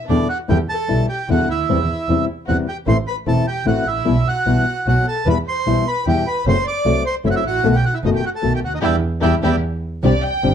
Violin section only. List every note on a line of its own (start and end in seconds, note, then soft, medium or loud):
0.09 0.28 D4 medium
0.30 0.39 F#4 medium
0.51 0.60 G4 medium
0.71 1.07 A4 medium
1.11 1.29 G4 medium
1.31 1.49 F#4 medium
1.50 2.25 E4 medium
2.48 2.57 F#4 medium
2.69 2.77 G4 medium
2.87 2.96 C5 medium
3.08 3.17 B4 medium
3.28 3.46 A4 medium
3.48 3.66 G4 medium
3.69 3.86 F#4 medium
3.88 4.24 E4 medium
4.27 4.83 F#4 medium
4.86 5.05 F#4 medium
5.06 5.25 A4 medium
5.25 5.35 B4 medium
5.47 5.84 C5 medium
5.87 6.05 B4 medium
6.07 6.25 G4 medium
6.27 6.45 B4 medium
6.47 6.65 C5 medium
6.68 7.03 D5 medium
7.06 7.15 C5 medium
7.26 7.28 E4 medium
7.26 7.34 F#4 medium
7.36 7.44 E4 medium
7.46 7.73 F#4 medium
7.75 7.84 G4 medium
7.84 7.93 F#4 medium
7.94 7.99 E4 medium
8.04 8.09 D#4 medium
8.14 8.23 G4 medium
8.25 8.29 F#4 medium
8.34 8.52 A4 medium
8.54 8.58 G4 medium
8.64 8.73 F#4 medium
8.75 8.79 D#4 medium
8.82 8.95 D4 medium
8.82 8.95 E4 medium
8.82 8.95 G4 medium
9.22 9.35 D4 medium
9.22 9.35 E4 medium
9.22 9.35 G4 medium
9.42 9.55 D4 medium
9.42 9.56 E4 medium
9.42 9.55 G4 medium
10.05 10.23 D5 medium
10.24 10.54 G5 loud